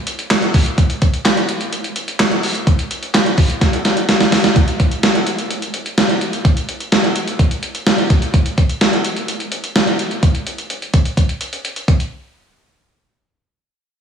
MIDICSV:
0, 0, Header, 1, 2, 480
1, 0, Start_track
1, 0, Tempo, 472441
1, 791, Time_signature, 4, 2, 24, 8
1, 14229, End_track
2, 0, Start_track
2, 0, Title_t, "Drums"
2, 68, Note_on_c, 9, 42, 77
2, 170, Note_off_c, 9, 42, 0
2, 190, Note_on_c, 9, 42, 59
2, 292, Note_off_c, 9, 42, 0
2, 311, Note_on_c, 9, 38, 126
2, 311, Note_on_c, 9, 39, 103
2, 312, Note_on_c, 9, 42, 78
2, 413, Note_off_c, 9, 38, 0
2, 413, Note_off_c, 9, 39, 0
2, 414, Note_off_c, 9, 42, 0
2, 429, Note_on_c, 9, 42, 55
2, 531, Note_off_c, 9, 42, 0
2, 550, Note_on_c, 9, 36, 99
2, 550, Note_on_c, 9, 46, 71
2, 652, Note_off_c, 9, 36, 0
2, 652, Note_off_c, 9, 46, 0
2, 671, Note_on_c, 9, 42, 48
2, 773, Note_off_c, 9, 42, 0
2, 791, Note_on_c, 9, 36, 121
2, 791, Note_on_c, 9, 42, 81
2, 893, Note_off_c, 9, 36, 0
2, 893, Note_off_c, 9, 42, 0
2, 912, Note_on_c, 9, 42, 58
2, 1014, Note_off_c, 9, 42, 0
2, 1033, Note_on_c, 9, 42, 66
2, 1034, Note_on_c, 9, 36, 88
2, 1135, Note_off_c, 9, 42, 0
2, 1136, Note_off_c, 9, 36, 0
2, 1153, Note_on_c, 9, 42, 49
2, 1255, Note_off_c, 9, 42, 0
2, 1271, Note_on_c, 9, 42, 73
2, 1273, Note_on_c, 9, 38, 110
2, 1273, Note_on_c, 9, 39, 88
2, 1372, Note_off_c, 9, 42, 0
2, 1375, Note_off_c, 9, 38, 0
2, 1375, Note_off_c, 9, 39, 0
2, 1394, Note_on_c, 9, 42, 50
2, 1495, Note_off_c, 9, 42, 0
2, 1510, Note_on_c, 9, 42, 88
2, 1612, Note_off_c, 9, 42, 0
2, 1631, Note_on_c, 9, 42, 55
2, 1733, Note_off_c, 9, 42, 0
2, 1753, Note_on_c, 9, 42, 77
2, 1855, Note_off_c, 9, 42, 0
2, 1872, Note_on_c, 9, 42, 54
2, 1974, Note_off_c, 9, 42, 0
2, 1990, Note_on_c, 9, 42, 75
2, 2091, Note_off_c, 9, 42, 0
2, 2112, Note_on_c, 9, 42, 60
2, 2214, Note_off_c, 9, 42, 0
2, 2233, Note_on_c, 9, 38, 127
2, 2233, Note_on_c, 9, 39, 104
2, 2233, Note_on_c, 9, 42, 78
2, 2334, Note_off_c, 9, 38, 0
2, 2334, Note_off_c, 9, 39, 0
2, 2335, Note_off_c, 9, 42, 0
2, 2351, Note_on_c, 9, 42, 56
2, 2453, Note_off_c, 9, 42, 0
2, 2472, Note_on_c, 9, 46, 72
2, 2574, Note_off_c, 9, 46, 0
2, 2593, Note_on_c, 9, 42, 49
2, 2694, Note_off_c, 9, 42, 0
2, 2712, Note_on_c, 9, 36, 121
2, 2713, Note_on_c, 9, 42, 84
2, 2814, Note_off_c, 9, 36, 0
2, 2815, Note_off_c, 9, 42, 0
2, 2834, Note_on_c, 9, 42, 59
2, 2935, Note_off_c, 9, 42, 0
2, 2954, Note_on_c, 9, 42, 69
2, 3056, Note_off_c, 9, 42, 0
2, 3074, Note_on_c, 9, 42, 50
2, 3176, Note_off_c, 9, 42, 0
2, 3192, Note_on_c, 9, 42, 72
2, 3194, Note_on_c, 9, 38, 111
2, 3194, Note_on_c, 9, 39, 90
2, 3293, Note_off_c, 9, 42, 0
2, 3296, Note_off_c, 9, 38, 0
2, 3296, Note_off_c, 9, 39, 0
2, 3314, Note_on_c, 9, 42, 51
2, 3416, Note_off_c, 9, 42, 0
2, 3431, Note_on_c, 9, 46, 64
2, 3432, Note_on_c, 9, 36, 97
2, 3532, Note_off_c, 9, 46, 0
2, 3533, Note_off_c, 9, 36, 0
2, 3552, Note_on_c, 9, 42, 57
2, 3654, Note_off_c, 9, 42, 0
2, 3671, Note_on_c, 9, 36, 90
2, 3672, Note_on_c, 9, 38, 63
2, 3673, Note_on_c, 9, 42, 74
2, 3773, Note_off_c, 9, 36, 0
2, 3774, Note_off_c, 9, 38, 0
2, 3775, Note_off_c, 9, 42, 0
2, 3792, Note_on_c, 9, 42, 55
2, 3894, Note_off_c, 9, 42, 0
2, 3910, Note_on_c, 9, 42, 74
2, 3912, Note_on_c, 9, 38, 75
2, 4011, Note_off_c, 9, 42, 0
2, 4014, Note_off_c, 9, 38, 0
2, 4032, Note_on_c, 9, 42, 58
2, 4133, Note_off_c, 9, 42, 0
2, 4152, Note_on_c, 9, 38, 94
2, 4153, Note_on_c, 9, 42, 77
2, 4254, Note_off_c, 9, 38, 0
2, 4255, Note_off_c, 9, 42, 0
2, 4271, Note_on_c, 9, 42, 55
2, 4272, Note_on_c, 9, 38, 85
2, 4372, Note_off_c, 9, 42, 0
2, 4374, Note_off_c, 9, 38, 0
2, 4391, Note_on_c, 9, 46, 71
2, 4392, Note_on_c, 9, 38, 110
2, 4493, Note_off_c, 9, 38, 0
2, 4493, Note_off_c, 9, 46, 0
2, 4512, Note_on_c, 9, 38, 97
2, 4512, Note_on_c, 9, 42, 49
2, 4613, Note_off_c, 9, 38, 0
2, 4614, Note_off_c, 9, 42, 0
2, 4632, Note_on_c, 9, 36, 113
2, 4632, Note_on_c, 9, 42, 77
2, 4733, Note_off_c, 9, 36, 0
2, 4733, Note_off_c, 9, 42, 0
2, 4753, Note_on_c, 9, 42, 54
2, 4854, Note_off_c, 9, 42, 0
2, 4873, Note_on_c, 9, 42, 62
2, 4875, Note_on_c, 9, 36, 83
2, 4975, Note_off_c, 9, 42, 0
2, 4977, Note_off_c, 9, 36, 0
2, 4993, Note_on_c, 9, 42, 46
2, 5095, Note_off_c, 9, 42, 0
2, 5111, Note_on_c, 9, 42, 69
2, 5114, Note_on_c, 9, 38, 103
2, 5213, Note_off_c, 9, 42, 0
2, 5216, Note_off_c, 9, 38, 0
2, 5234, Note_on_c, 9, 42, 47
2, 5336, Note_off_c, 9, 42, 0
2, 5350, Note_on_c, 9, 42, 79
2, 5451, Note_off_c, 9, 42, 0
2, 5471, Note_on_c, 9, 42, 53
2, 5573, Note_off_c, 9, 42, 0
2, 5593, Note_on_c, 9, 42, 72
2, 5695, Note_off_c, 9, 42, 0
2, 5712, Note_on_c, 9, 42, 52
2, 5814, Note_off_c, 9, 42, 0
2, 5830, Note_on_c, 9, 42, 70
2, 5932, Note_off_c, 9, 42, 0
2, 5952, Note_on_c, 9, 42, 54
2, 6054, Note_off_c, 9, 42, 0
2, 6073, Note_on_c, 9, 38, 113
2, 6074, Note_on_c, 9, 42, 73
2, 6175, Note_off_c, 9, 38, 0
2, 6175, Note_off_c, 9, 42, 0
2, 6191, Note_on_c, 9, 42, 51
2, 6293, Note_off_c, 9, 42, 0
2, 6312, Note_on_c, 9, 42, 65
2, 6413, Note_off_c, 9, 42, 0
2, 6433, Note_on_c, 9, 42, 45
2, 6534, Note_off_c, 9, 42, 0
2, 6552, Note_on_c, 9, 36, 109
2, 6553, Note_on_c, 9, 42, 78
2, 6653, Note_off_c, 9, 36, 0
2, 6654, Note_off_c, 9, 42, 0
2, 6673, Note_on_c, 9, 42, 54
2, 6775, Note_off_c, 9, 42, 0
2, 6794, Note_on_c, 9, 42, 63
2, 6895, Note_off_c, 9, 42, 0
2, 6913, Note_on_c, 9, 42, 45
2, 7015, Note_off_c, 9, 42, 0
2, 7031, Note_on_c, 9, 42, 67
2, 7033, Note_on_c, 9, 38, 99
2, 7133, Note_off_c, 9, 42, 0
2, 7135, Note_off_c, 9, 38, 0
2, 7154, Note_on_c, 9, 42, 47
2, 7256, Note_off_c, 9, 42, 0
2, 7270, Note_on_c, 9, 42, 79
2, 7372, Note_off_c, 9, 42, 0
2, 7391, Note_on_c, 9, 42, 52
2, 7493, Note_off_c, 9, 42, 0
2, 7511, Note_on_c, 9, 36, 82
2, 7512, Note_on_c, 9, 42, 72
2, 7612, Note_off_c, 9, 36, 0
2, 7614, Note_off_c, 9, 42, 0
2, 7631, Note_on_c, 9, 42, 51
2, 7733, Note_off_c, 9, 42, 0
2, 7749, Note_on_c, 9, 42, 67
2, 7850, Note_off_c, 9, 42, 0
2, 7872, Note_on_c, 9, 42, 53
2, 7973, Note_off_c, 9, 42, 0
2, 7992, Note_on_c, 9, 38, 115
2, 7992, Note_on_c, 9, 42, 71
2, 8093, Note_off_c, 9, 38, 0
2, 8094, Note_off_c, 9, 42, 0
2, 8110, Note_on_c, 9, 42, 51
2, 8212, Note_off_c, 9, 42, 0
2, 8231, Note_on_c, 9, 36, 92
2, 8231, Note_on_c, 9, 42, 66
2, 8332, Note_off_c, 9, 36, 0
2, 8332, Note_off_c, 9, 42, 0
2, 8352, Note_on_c, 9, 42, 45
2, 8454, Note_off_c, 9, 42, 0
2, 8471, Note_on_c, 9, 42, 75
2, 8472, Note_on_c, 9, 36, 107
2, 8573, Note_off_c, 9, 36, 0
2, 8573, Note_off_c, 9, 42, 0
2, 8593, Note_on_c, 9, 42, 53
2, 8695, Note_off_c, 9, 42, 0
2, 8714, Note_on_c, 9, 42, 60
2, 8715, Note_on_c, 9, 36, 82
2, 8816, Note_off_c, 9, 42, 0
2, 8817, Note_off_c, 9, 36, 0
2, 8834, Note_on_c, 9, 42, 45
2, 8936, Note_off_c, 9, 42, 0
2, 8951, Note_on_c, 9, 42, 66
2, 8953, Note_on_c, 9, 38, 97
2, 9052, Note_off_c, 9, 42, 0
2, 9055, Note_off_c, 9, 38, 0
2, 9074, Note_on_c, 9, 42, 46
2, 9176, Note_off_c, 9, 42, 0
2, 9190, Note_on_c, 9, 42, 82
2, 9292, Note_off_c, 9, 42, 0
2, 9311, Note_on_c, 9, 42, 50
2, 9412, Note_off_c, 9, 42, 0
2, 9432, Note_on_c, 9, 42, 69
2, 9534, Note_off_c, 9, 42, 0
2, 9552, Note_on_c, 9, 42, 48
2, 9653, Note_off_c, 9, 42, 0
2, 9669, Note_on_c, 9, 42, 68
2, 9771, Note_off_c, 9, 42, 0
2, 9791, Note_on_c, 9, 42, 54
2, 9893, Note_off_c, 9, 42, 0
2, 9913, Note_on_c, 9, 38, 117
2, 9913, Note_on_c, 9, 42, 71
2, 10014, Note_off_c, 9, 38, 0
2, 10015, Note_off_c, 9, 42, 0
2, 10031, Note_on_c, 9, 42, 51
2, 10132, Note_off_c, 9, 42, 0
2, 10151, Note_on_c, 9, 42, 64
2, 10253, Note_off_c, 9, 42, 0
2, 10272, Note_on_c, 9, 42, 43
2, 10374, Note_off_c, 9, 42, 0
2, 10391, Note_on_c, 9, 42, 75
2, 10392, Note_on_c, 9, 36, 106
2, 10493, Note_off_c, 9, 36, 0
2, 10493, Note_off_c, 9, 42, 0
2, 10512, Note_on_c, 9, 42, 51
2, 10614, Note_off_c, 9, 42, 0
2, 10633, Note_on_c, 9, 42, 60
2, 10735, Note_off_c, 9, 42, 0
2, 10753, Note_on_c, 9, 42, 44
2, 10855, Note_off_c, 9, 42, 0
2, 10872, Note_on_c, 9, 42, 65
2, 10973, Note_off_c, 9, 42, 0
2, 10995, Note_on_c, 9, 42, 44
2, 11096, Note_off_c, 9, 42, 0
2, 11110, Note_on_c, 9, 42, 74
2, 11112, Note_on_c, 9, 36, 84
2, 11212, Note_off_c, 9, 42, 0
2, 11213, Note_off_c, 9, 36, 0
2, 11231, Note_on_c, 9, 42, 50
2, 11333, Note_off_c, 9, 42, 0
2, 11351, Note_on_c, 9, 36, 81
2, 11353, Note_on_c, 9, 42, 67
2, 11453, Note_off_c, 9, 36, 0
2, 11455, Note_off_c, 9, 42, 0
2, 11472, Note_on_c, 9, 42, 47
2, 11574, Note_off_c, 9, 42, 0
2, 11590, Note_on_c, 9, 42, 65
2, 11691, Note_off_c, 9, 42, 0
2, 11712, Note_on_c, 9, 42, 52
2, 11814, Note_off_c, 9, 42, 0
2, 11833, Note_on_c, 9, 42, 70
2, 11935, Note_off_c, 9, 42, 0
2, 11950, Note_on_c, 9, 42, 49
2, 12052, Note_off_c, 9, 42, 0
2, 12071, Note_on_c, 9, 36, 89
2, 12071, Note_on_c, 9, 42, 64
2, 12172, Note_off_c, 9, 36, 0
2, 12172, Note_off_c, 9, 42, 0
2, 12192, Note_on_c, 9, 42, 41
2, 12293, Note_off_c, 9, 42, 0
2, 14229, End_track
0, 0, End_of_file